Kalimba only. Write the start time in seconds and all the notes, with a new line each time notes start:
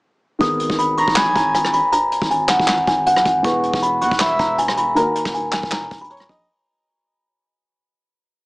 0.41 D#6
0.79 B5
0.98 C#6
1.17 B5
1.36 A#5
1.55 G#5
1.74 B5
1.93 A#5
2.31 G#5
2.50 F#5
2.88 G#5
3.07 F#5
3.45 C#6
3.83 B5
4.02 C#6
4.21 B5
4.40 A#5
4.58 G#5
4.77 B5
4.96 A#5
5.34 G#5
5.53 G#5
5.72 A#5
6.01 B5
6.10 A#5